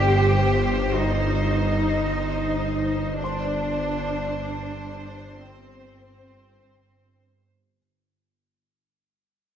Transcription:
0, 0, Header, 1, 6, 480
1, 0, Start_track
1, 0, Tempo, 500000
1, 9170, End_track
2, 0, Start_track
2, 0, Title_t, "Felt piano"
2, 0, Program_c, 0, 0
2, 0, Control_c, 0, 64, 127
2, 0, Note_on_c, 0, 74, 20
2, 0, Note_on_c, 0, 75, 31
2, 0, Note_on_c, 0, 86, 25
2, 1968, Note_off_c, 0, 75, 0
2, 3041, Note_off_c, 0, 74, 0
2, 3042, Note_off_c, 0, 86, 0
2, 3096, Control_c, 0, 64, 0
2, 3106, Note_on_c, 0, 72, 25
2, 3111, Note_on_c, 0, 84, 34
2, 3234, Control_c, 0, 64, 127
2, 6313, Note_off_c, 0, 72, 0
2, 6315, Note_off_c, 0, 84, 0
2, 7473, Control_c, 0, 64, 0
2, 9170, End_track
3, 0, Start_track
3, 0, Title_t, "Violin section"
3, 0, Program_c, 1, 48
3, 0, Note_on_c, 1, 72, 34
3, 3046, Note_off_c, 1, 72, 0
3, 3063, Note_on_c, 1, 72, 43
3, 7215, Note_off_c, 1, 72, 0
3, 9170, End_track
4, 0, Start_track
4, 0, Title_t, "Cello section"
4, 0, Program_c, 2, 48
4, 0, Note_on_c, 2, 67, 48
4, 896, Note_off_c, 2, 67, 0
4, 930, Note_on_c, 2, 63, 51
4, 3076, Note_on_c, 2, 62, 59
4, 3079, Note_off_c, 2, 63, 0
4, 5194, Note_off_c, 2, 62, 0
4, 5238, Note_on_c, 2, 60, 43
4, 6902, Note_off_c, 2, 60, 0
4, 9170, End_track
5, 0, Start_track
5, 0, Title_t, "Double bass section"
5, 0, Program_c, 3, 48
5, 0, Note_on_c, 3, 43, 33
5, 3042, Note_off_c, 3, 43, 0
5, 3077, Note_on_c, 3, 43, 40
5, 7222, Note_off_c, 3, 43, 0
5, 9170, End_track
6, 0, Start_track
6, 0, Title_t, "Synth drone"
6, 0, Program_c, 4, 95
6, 0, Note_on_c, 4, 31, 60
6, 3050, Note_off_c, 4, 31, 0
6, 3083, Note_on_c, 4, 31, 59
6, 7418, Note_off_c, 4, 31, 0
6, 9170, End_track
0, 0, End_of_file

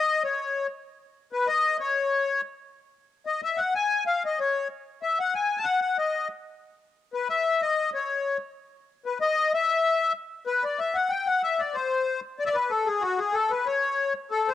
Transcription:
0, 0, Header, 1, 2, 480
1, 0, Start_track
1, 0, Tempo, 321199
1, 1249, Time_signature, 3, 2, 24, 8
1, 21729, End_track
2, 0, Start_track
2, 0, Title_t, "Accordion"
2, 0, Program_c, 0, 21
2, 0, Note_on_c, 0, 75, 110
2, 343, Note_off_c, 0, 75, 0
2, 359, Note_on_c, 0, 73, 72
2, 1002, Note_off_c, 0, 73, 0
2, 1978, Note_on_c, 0, 71, 77
2, 2201, Note_on_c, 0, 75, 101
2, 2208, Note_off_c, 0, 71, 0
2, 2645, Note_off_c, 0, 75, 0
2, 2696, Note_on_c, 0, 73, 86
2, 3604, Note_off_c, 0, 73, 0
2, 4875, Note_on_c, 0, 75, 72
2, 5092, Note_off_c, 0, 75, 0
2, 5128, Note_on_c, 0, 76, 98
2, 5339, Note_on_c, 0, 78, 79
2, 5376, Note_off_c, 0, 76, 0
2, 5584, Note_off_c, 0, 78, 0
2, 5605, Note_on_c, 0, 80, 108
2, 6035, Note_off_c, 0, 80, 0
2, 6079, Note_on_c, 0, 77, 96
2, 6321, Note_off_c, 0, 77, 0
2, 6360, Note_on_c, 0, 75, 77
2, 6564, Note_off_c, 0, 75, 0
2, 6573, Note_on_c, 0, 73, 70
2, 6992, Note_off_c, 0, 73, 0
2, 7512, Note_on_c, 0, 76, 85
2, 7749, Note_off_c, 0, 76, 0
2, 7769, Note_on_c, 0, 78, 83
2, 7981, Note_off_c, 0, 78, 0
2, 7991, Note_on_c, 0, 80, 87
2, 8331, Note_on_c, 0, 81, 75
2, 8346, Note_off_c, 0, 80, 0
2, 8419, Note_on_c, 0, 78, 105
2, 8443, Note_off_c, 0, 81, 0
2, 8666, Note_off_c, 0, 78, 0
2, 8688, Note_on_c, 0, 78, 79
2, 8925, Note_off_c, 0, 78, 0
2, 8942, Note_on_c, 0, 75, 76
2, 9383, Note_off_c, 0, 75, 0
2, 10664, Note_on_c, 0, 71, 74
2, 10881, Note_off_c, 0, 71, 0
2, 10906, Note_on_c, 0, 76, 99
2, 11374, Note_off_c, 0, 76, 0
2, 11383, Note_on_c, 0, 75, 90
2, 11806, Note_off_c, 0, 75, 0
2, 11868, Note_on_c, 0, 73, 70
2, 12512, Note_off_c, 0, 73, 0
2, 13537, Note_on_c, 0, 71, 74
2, 13724, Note_off_c, 0, 71, 0
2, 13767, Note_on_c, 0, 75, 101
2, 14231, Note_off_c, 0, 75, 0
2, 14263, Note_on_c, 0, 76, 100
2, 15131, Note_off_c, 0, 76, 0
2, 15646, Note_on_c, 0, 71, 77
2, 15898, Note_on_c, 0, 74, 71
2, 15906, Note_off_c, 0, 71, 0
2, 16129, Note_on_c, 0, 76, 80
2, 16137, Note_off_c, 0, 74, 0
2, 16355, Note_on_c, 0, 78, 69
2, 16389, Note_off_c, 0, 76, 0
2, 16579, Note_on_c, 0, 79, 86
2, 16607, Note_off_c, 0, 78, 0
2, 16838, Note_on_c, 0, 78, 79
2, 16857, Note_off_c, 0, 79, 0
2, 17068, Note_off_c, 0, 78, 0
2, 17082, Note_on_c, 0, 76, 93
2, 17324, Note_on_c, 0, 74, 69
2, 17351, Note_off_c, 0, 76, 0
2, 17550, Note_on_c, 0, 72, 71
2, 17577, Note_off_c, 0, 74, 0
2, 18239, Note_off_c, 0, 72, 0
2, 18520, Note_on_c, 0, 74, 82
2, 18590, Note_off_c, 0, 74, 0
2, 18611, Note_on_c, 0, 76, 72
2, 18624, Note_on_c, 0, 74, 96
2, 18665, Note_off_c, 0, 76, 0
2, 18742, Note_on_c, 0, 71, 76
2, 18769, Note_off_c, 0, 74, 0
2, 18984, Note_on_c, 0, 69, 73
2, 18997, Note_off_c, 0, 71, 0
2, 19215, Note_on_c, 0, 68, 69
2, 19253, Note_off_c, 0, 69, 0
2, 19436, Note_on_c, 0, 66, 86
2, 19472, Note_off_c, 0, 68, 0
2, 19704, Note_on_c, 0, 68, 69
2, 19717, Note_off_c, 0, 66, 0
2, 19921, Note_on_c, 0, 69, 85
2, 19953, Note_off_c, 0, 68, 0
2, 20180, Note_on_c, 0, 71, 73
2, 20197, Note_off_c, 0, 69, 0
2, 20417, Note_on_c, 0, 73, 82
2, 20434, Note_off_c, 0, 71, 0
2, 21121, Note_off_c, 0, 73, 0
2, 21387, Note_on_c, 0, 69, 86
2, 21643, Note_on_c, 0, 72, 73
2, 21666, Note_off_c, 0, 69, 0
2, 21729, Note_off_c, 0, 72, 0
2, 21729, End_track
0, 0, End_of_file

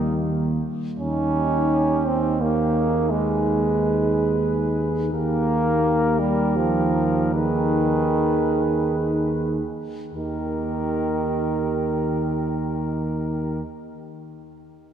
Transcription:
0, 0, Header, 1, 6, 480
1, 0, Start_track
1, 0, Key_signature, -3, "major"
1, 0, Tempo, 500000
1, 14335, End_track
2, 0, Start_track
2, 0, Title_t, "Cornet"
2, 0, Program_c, 0, 56
2, 0, Note_on_c, 0, 63, 47
2, 171, Note_off_c, 0, 63, 0
2, 960, Note_on_c, 0, 67, 45
2, 2283, Note_off_c, 0, 67, 0
2, 2333, Note_on_c, 0, 67, 39
2, 2649, Note_off_c, 0, 67, 0
2, 2673, Note_on_c, 0, 68, 38
2, 2985, Note_off_c, 0, 68, 0
2, 3002, Note_on_c, 0, 71, 41
2, 4893, Note_off_c, 0, 71, 0
2, 4927, Note_on_c, 0, 70, 45
2, 7050, Note_on_c, 0, 71, 48
2, 7065, Note_off_c, 0, 70, 0
2, 9278, Note_off_c, 0, 71, 0
2, 9732, Note_on_c, 0, 70, 35
2, 13068, Note_off_c, 0, 70, 0
2, 14335, End_track
3, 0, Start_track
3, 0, Title_t, "French horn section"
3, 0, Program_c, 1, 60
3, 0, Note_on_c, 1, 58, 53
3, 588, Note_off_c, 1, 58, 0
3, 952, Note_on_c, 1, 63, 47
3, 2279, Note_off_c, 1, 63, 0
3, 2316, Note_on_c, 1, 63, 42
3, 2965, Note_off_c, 1, 63, 0
3, 2979, Note_on_c, 1, 68, 47
3, 4910, Note_on_c, 1, 67, 46
3, 4920, Note_off_c, 1, 68, 0
3, 7013, Note_off_c, 1, 67, 0
3, 7062, Note_on_c, 1, 68, 51
3, 9284, Note_off_c, 1, 68, 0
3, 9732, Note_on_c, 1, 67, 37
3, 13068, Note_off_c, 1, 67, 0
3, 14335, End_track
4, 0, Start_track
4, 0, Title_t, "Euphonium"
4, 0, Program_c, 2, 58
4, 0, Note_on_c, 2, 55, 49
4, 621, Note_off_c, 2, 55, 0
4, 954, Note_on_c, 2, 63, 46
4, 2280, Note_off_c, 2, 63, 0
4, 2335, Note_on_c, 2, 63, 39
4, 2975, Note_off_c, 2, 63, 0
4, 2990, Note_on_c, 2, 63, 43
4, 4888, Note_off_c, 2, 63, 0
4, 4924, Note_on_c, 2, 63, 48
4, 7020, Note_off_c, 2, 63, 0
4, 7055, Note_on_c, 2, 63, 50
4, 9242, Note_off_c, 2, 63, 0
4, 9723, Note_on_c, 2, 63, 34
4, 13060, Note_off_c, 2, 63, 0
4, 14335, End_track
5, 0, Start_track
5, 0, Title_t, "Trombone"
5, 0, Program_c, 3, 57
5, 0, Note_on_c, 3, 51, 51
5, 625, Note_off_c, 3, 51, 0
5, 951, Note_on_c, 3, 61, 69
5, 1989, Note_on_c, 3, 60, 58
5, 2003, Note_off_c, 3, 61, 0
5, 2318, Note_on_c, 3, 58, 59
5, 2332, Note_off_c, 3, 60, 0
5, 2985, Note_on_c, 3, 56, 63
5, 3000, Note_off_c, 3, 58, 0
5, 4601, Note_off_c, 3, 56, 0
5, 4926, Note_on_c, 3, 58, 73
5, 5947, Note_on_c, 3, 55, 60
5, 5962, Note_off_c, 3, 58, 0
5, 6303, Note_on_c, 3, 53, 60
5, 6317, Note_off_c, 3, 55, 0
5, 7046, Note_off_c, 3, 53, 0
5, 7051, Note_on_c, 3, 51, 65
5, 9185, Note_off_c, 3, 51, 0
5, 9730, Note_on_c, 3, 51, 45
5, 13066, Note_off_c, 3, 51, 0
5, 14335, End_track
6, 0, Start_track
6, 0, Title_t, "Tuba"
6, 0, Program_c, 4, 58
6, 0, Note_on_c, 4, 39, 54
6, 589, Note_off_c, 4, 39, 0
6, 963, Note_on_c, 4, 39, 48
6, 4887, Note_off_c, 4, 39, 0
6, 4925, Note_on_c, 4, 39, 45
6, 9245, Note_off_c, 4, 39, 0
6, 9740, Note_on_c, 4, 39, 35
6, 13076, Note_off_c, 4, 39, 0
6, 14335, End_track
0, 0, End_of_file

